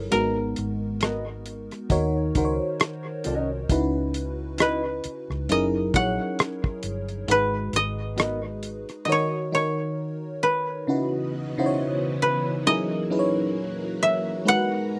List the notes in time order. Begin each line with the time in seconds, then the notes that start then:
Already playing: F#3 C#4 D#4 E4 G#4 A4 A#4 C#5 D#5
0.11 G#1 G#3 B3 D#4 F#4 A#4, closed hi-hat
0.56 G#1, closed hi-hat
1.01 B3 F#4 A#4 D#5, cross-stick, closed hi-hat
1.46 closed hi-hat
1.71 cross-stick, closed hi-hat
1.89 D#2 D#3 D#4 F#4 A#4 C#5, kick, closed hi-hat
2.35 C#2 D#3 D#4 F#4 A#4 C5, kick, closed hi-hat
2.45 C#5
2.80 muted nylon-string guitar stroke, cross-stick, closed hi-hat
3.24 C2 C#4 F#4 A#4 D#5, closed hi-hat
3.69 C#2 C#3 C#4 D#4 E4 F#4 B4, kick, closed hi-hat
4.14 closed hi-hat
4.58 E4 F#4 B4 D#5, cross-stick, closed hi-hat
5.04 muted fingered electric bass stroke, closed hi-hat
5.30 C#2, cross-stick
5.49 F#1 F#3 C#4 D#4 E4 G#4 A#4 D#5, closed hi-hat
5.94 A#1 F#3 C#4 D#4 E4 G#4 C#5 F#5, kick, closed hi-hat
6.39 cross-stick, closed hi-hat
6.64 kick
6.83 G1, closed hi-hat
7.09 closed hi-hat
7.28 G#1 G#3 D#4 F#4 G#4 B4, closed hi-hat
7.73 G#1 D#5, closed hi-hat
8.16 B3 F#4 A#4 D#5, cross-stick, closed hi-hat
8.63 closed hi-hat
8.89 cross-stick, closed hi-hat
9.05 D#3 D#4 F#4 D#5
9.09 A#4 C#5
9.52 D#3 D#4 F#4 A#4 C#5
10.43 B4
10.87 C#3 E3 B3 C#4 D#4 E4 F#4 B4 D#5
11.58 C#3 C#4 D#4 E4 F#4 C5
11.66 C#5
12.22 B4
12.66 F#3 A#3 C#4 D#4 E4 G#4 A#4 D#5
13.10 F#3 C#4 D#4 E4 G#4 B4
13.19 C#5
14.03 E5
14.45 G#3 B3 D#4 F#4 A#4 B4 F#5 A#5